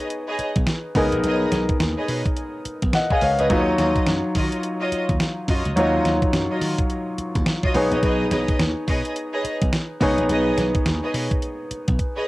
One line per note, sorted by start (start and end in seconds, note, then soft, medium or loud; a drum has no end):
0.00 0.91 B3 medium
0.00 0.92 D#4 medium
0.00 0.92 G#4 medium
0.00 0.92 C#5 medium
0.10 closed hi-hat medium
0.27 0.46 G#4 medium
0.27 0.46 B4 medium
0.27 0.46 C#5 medium
0.27 0.46 D#5 medium
0.39 muted slap bass stroke soft
0.39 closed hi-hat medium
0.56 0.64 B1 loud
0.56 kick medium
0.56 closed hi-hat medium
0.67 snare loud
0.67 closed hi-hat medium
0.95 1.08 C#2 medium
0.95 3.18 B3 medium
0.95 3.18 D#4 medium
0.95 1.17 G#4 medium
0.95 3.18 G#4 medium
0.95 2.91 A#4 medium
0.95 1.17 B4 medium
0.95 1.17 C#5 medium
0.95 1.17 D#5 medium
0.95 kick medium
0.95 open hi-hat medium
1.12 1.21 A#1 medium
1.12 closed hi-hat medium
1.23 1.45 B1 loud
1.23 1.50 G#4 medium
1.23 1.50 B4 medium
1.23 1.50 C#5 medium
1.23 1.50 D#5 loud
1.23 closed hi-hat medium
1.52 1.65 B1 medium
1.52 snare medium
1.52 closed hi-hat medium
1.69 kick medium
1.69 closed hi-hat soft
1.80 1.93 D#2 medium
1.80 snare loud
1.80 closed hi-hat medium
1.97 2.15 G#4 medium
1.97 2.15 B4 medium
1.97 2.16 C#5 medium
1.97 2.16 D#5 medium
2.08 2.22 B2 medium
2.08 open hi-hat medium
2.25 kick medium
2.25 closed hi-hat medium
2.36 closed hi-hat medium
2.65 muted slap bass stroke soft
2.65 closed hi-hat medium
2.82 2.91 B1 medium
2.82 kick medium
2.82 closed hi-hat medium
2.93 3.11 D#5 medium
2.93 3.10 F#5 medium
2.93 snare loud
2.93 closed hi-hat medium
3.10 3.29 G#4 medium
3.10 3.29 B4 medium
3.10 3.29 C#5 medium
3.10 3.29 D#5 medium
3.10 3.21 F5 medium
3.10 3.22 G#5 medium
3.10 kick medium
3.21 3.35 C#2 medium
3.21 3.39 C#5 medium
3.21 3.38 F5 medium
3.21 open hi-hat medium
3.39 3.47 C#2 medium
3.39 3.57 G#4 medium
3.39 3.57 B4 medium
3.39 3.50 B4 medium
3.39 3.49 C#5 medium
3.39 3.49 D#5 medium
3.39 3.66 D#5 medium
3.39 closed hi-hat medium
3.50 3.71 D#2 loud
3.50 5.72 F#3 medium
3.50 5.73 D#4 medium
3.50 3.72 F4 medium
3.50 5.73 F4 medium
3.50 3.72 F#4 medium
3.50 3.59 B4 medium
3.50 3.72 C#5 medium
3.50 3.72 D#5 loud
3.50 kick loud
3.50 closed hi-hat medium
3.58 5.77 C#5 medium
3.78 3.91 D#2 medium
3.78 4.00 F4 medium
3.78 4.00 F#4 medium
3.78 4.00 C#5 medium
3.78 4.00 D#5 medium
3.78 snare medium
3.78 closed hi-hat medium
3.96 kick medium
3.96 closed hi-hat soft
4.07 4.20 F#2 loud
4.07 snare loud
4.07 closed hi-hat medium
4.35 4.48 D#3 medium
4.35 4.56 F4 medium
4.35 4.57 F#4 medium
4.35 4.57 C#5 medium
4.35 4.57 D#5 medium
4.35 kick medium
4.35 open hi-hat medium
4.52 closed hi-hat medium
4.63 closed hi-hat medium
4.80 4.98 F4 medium
4.80 4.99 F#4 medium
4.80 4.99 C#5 medium
4.80 4.99 D#5 medium
4.92 muted slap bass stroke soft
4.92 closed hi-hat medium
5.09 5.17 D#2 medium
5.09 kick medium
5.09 closed hi-hat medium
5.20 snare loud
5.20 closed hi-hat medium
5.48 5.61 F#2 medium
5.48 5.70 F4 medium
5.48 5.70 F#4 medium
5.48 5.70 C#5 medium
5.48 5.70 D#5 medium
5.48 kick medium
5.48 open hi-hat medium
5.65 5.74 C#2 medium
5.65 closed hi-hat medium
5.76 5.98 D#2 loud
5.76 7.70 F#3 medium
5.76 7.71 D#4 medium
5.76 6.03 F4 medium
5.76 7.71 F4 medium
5.76 6.03 F#4 medium
5.76 6.03 C#5 medium
5.76 7.72 C#5 medium
5.76 6.03 D#5 loud
5.76 closed hi-hat medium
6.05 6.18 D#2 medium
6.05 snare medium
6.05 closed hi-hat medium
6.22 kick medium
6.22 closed hi-hat soft
6.33 6.46 F#2 loud
6.33 snare loud
6.33 closed hi-hat medium
6.50 6.68 F4 medium
6.50 6.68 F#4 medium
6.50 6.68 C#5 medium
6.50 6.69 D#5 medium
6.61 6.74 D#3 loud
6.61 open hi-hat medium
6.79 kick loud
6.79 closed hi-hat medium
6.90 closed hi-hat medium
7.18 muted slap bass stroke soft
7.18 closed hi-hat medium
7.35 7.44 D#2 medium
7.35 kick medium
7.35 closed hi-hat medium
7.46 snare loud
7.46 closed hi-hat medium
7.63 7.81 F4 medium
7.63 7.81 F#4 medium
7.63 7.81 C#5 medium
7.63 7.82 D#5 medium
7.63 kick medium
7.74 7.88 B1 medium
7.74 9.97 B3 medium
7.74 9.97 D#4 medium
7.74 9.98 G#4 medium
7.74 9.98 C#5 medium
7.74 open hi-hat medium
7.91 8.00 A#1 loud
7.91 8.01 G#4 medium
7.91 8.01 B4 medium
7.91 8.01 C#5 medium
7.91 8.02 D#5 medium
7.91 closed hi-hat soft
8.02 8.24 B1 loud
8.02 8.24 G#4 loud
8.02 8.24 B4 medium
8.02 8.24 C#5 medium
8.02 8.25 D#5 loud
8.02 kick loud
8.02 closed hi-hat medium
8.31 8.44 B1 medium
8.31 8.53 G#4 medium
8.31 8.53 B4 medium
8.31 8.53 C#5 medium
8.31 8.53 D#5 medium
8.31 snare medium
8.31 closed hi-hat medium
8.48 kick medium
8.48 closed hi-hat soft
8.59 8.72 D#2 medium
8.59 snare loud
8.59 closed hi-hat medium
8.88 9.01 B2 loud
8.88 9.09 G#4 medium
8.88 9.09 B4 medium
8.88 9.10 C#5 medium
8.88 9.10 D#5 medium
8.88 kick medium
8.88 open hi-hat medium
9.05 closed hi-hat medium
9.16 closed hi-hat medium
9.33 9.51 G#4 medium
9.33 9.51 B4 medium
9.33 9.51 C#5 medium
9.33 9.51 D#5 medium
9.44 muted slap bass stroke soft
9.44 closed hi-hat medium
9.62 9.70 B1 medium
9.62 kick medium
9.62 closed hi-hat medium
9.73 snare loud
9.73 closed hi-hat medium
10.01 10.14 C#2 medium
10.01 12.23 B3 medium
10.01 12.24 D#4 medium
10.01 10.22 G#4 medium
10.01 12.24 G#4 medium
10.01 10.23 B4 medium
10.01 10.23 C#5 medium
10.01 12.24 C#5 medium
10.01 10.23 D#5 medium
10.01 kick medium
10.01 open hi-hat medium
10.18 10.26 A#1 loud
10.18 closed hi-hat medium
10.29 10.51 B1 loud
10.29 10.56 G#4 medium
10.29 10.56 B4 medium
10.29 10.56 C#5 medium
10.29 10.56 D#5 loud
10.29 closed hi-hat medium
10.57 10.70 B1 medium
10.57 snare medium
10.57 closed hi-hat medium
10.75 kick medium
10.75 closed hi-hat soft
10.86 10.99 D#2 loud
10.86 snare loud
10.86 closed hi-hat medium
11.03 11.21 G#4 medium
11.03 11.21 B4 medium
11.03 11.21 C#5 medium
11.03 11.21 D#5 medium
11.14 11.27 B2 medium
11.14 open hi-hat medium
11.31 kick medium
11.31 closed hi-hat medium
11.42 closed hi-hat medium
11.71 muted slap bass stroke soft
11.71 closed hi-hat medium
11.88 11.96 B1 medium
11.88 kick medium
11.88 closed hi-hat medium
11.99 kick medium
11.99 closed hi-hat medium
12.16 12.28 G#4 medium
12.16 12.28 B4 medium
12.16 12.28 C#5 medium
12.16 12.28 D#5 medium